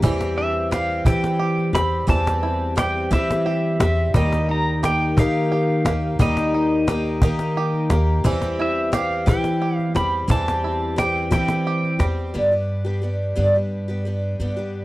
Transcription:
Already playing: D#4 G4
0.02 E2 E3 G3 C4 G4, cajon bass
0.21 cajon slap
0.38 D4 E5, cajon slap
0.71 E3 G3 C4 G4 F5, cajon slap
0.89 cajon slap
1.05 E3 G3 C4 E4 G4 G5, cajon bass
1.24 cajon slap
1.39 G4, cajon slap
1.58 cajon slap
1.73 E2 G3 C4 G4 B5, cajon slap
2.07 E2 E3 G3 C4 G4 A5, cajon bass, cajon slap
2.27 cajon slap
2.43 E4, cajon slap
2.76 E3 G3 C4 G4 G5, cajon slap
3.11 E3 G3 C4 E4 G4 E5, cajon bass, cajon slap
3.31 cajon slap
3.46 G4, cajon slap
3.80 E2 G3 C4 G4 E5, cajon slap
3.98 cajon slap
4.14 D#2 D#3 G3 A#3 D#4 G4 D#5, cajon bass
4.32 cajon slap
4.49 D#4 A#5, cajon slap
4.83 D#3 A#3 D#4 G4 G5, cajon slap
5.01 cajon slap
5.17 D#3 A#3 D#4 G4 F5, cajon bass
5.52 G4, cajon slap
5.69 cajon slap
5.85 D#2 A#3 D#4 G4, cajon slap
6.19 D#2 D#3 G3 A#3 D#4 G4 D#5, cajon bass
6.37 cajon slap
6.54 D#4, cajon slap
6.87 D#3 A#3 D#4 G4, cajon slap
7.04 cajon slap
7.22 D#3 A#3 D#4 G4, cajon bass
7.39 cajon slap
7.56 G4, cajon slap
7.74 cajon slap
7.90 D#2 A#3 D#4 G4, cajon slap
8.24 E2 E3 G3 C4 G4, cajon bass
8.42 cajon slap
8.59 E4 E5, cajon slap
8.92 E3 G3 C4 G4 F5, cajon slap
9.10 cajon slap
9.26 E3 G3 C4 E4 G4 G5, cajon bass
9.44 cajon slap
9.62 G4
9.76 F5, cajon slap
9.95 E2 G3 C4 G4 B5, cajon slap
10.28 E2 E3 G3 C4 G4 A5, cajon bass
10.48 cajon slap
10.64 E4
10.96 E3 G3 C4 G4 G5, cajon slap
11.16 cajon slap
11.31 E3 G3 C4 E4 G4 G5, cajon bass, cajon slap
11.48 cajon slap
11.67 G4
11.84 cajon slap
11.99 E2 G3 C4 G4, cajon slap
12.18 cajon slap
12.34 G2 D3 G3 B3 D4 G4
12.51 G3 B3 D4 G4
12.85 G3 B3 D4 G4
13.02 G3 B3 D4 G4
13.36 G2 D3 G3 B3 D4 G4
13.54 G3 B3 D4 G4
13.88 G3 B3 D4 G4
14.05 G3 B3 D4 G4
14.40 G2 D3 G3 B3 D4 G4
14.57 G3 B3 D4 G4

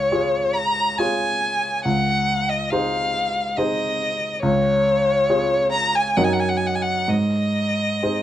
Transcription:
Already playing: C#2 C#5
0.12 F4 G#4 C#5
0.53 A#5
0.98 F4 G#4 C#5 G#5
1.85 C#2 F#5
2.49 D#5
2.71 D#4 G#4 C5 F5
3.57 D#4 G#4 C5 D#5
4.42 C#2 C#5
5.30 F4 G#4 C#5
5.72 A#5
5.95 G#5
6.16 F#2 D#4 A#4 D#5 F#5
6.24 G#5
6.33 F#5
6.40 G#5
6.49 F#5
6.57 G#5
6.67 F#5
6.75 G#5
6.82 F#5
7.08 G#2 D#5
8.03 D#4 G#4 C5

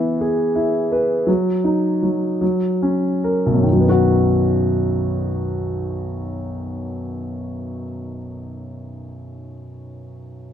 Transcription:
Already playing: E3 B3 E4
0.21 G#4
0.55 E4
0.92 B4
1.27 F#3
1.64 D#4
2.03 F#3
2.41 F#3
2.82 C#4
3.24 A#4
3.46 B1
3.54 F#2
3.63 D#3
3.72 F#3
3.80 B3
3.89 F#4

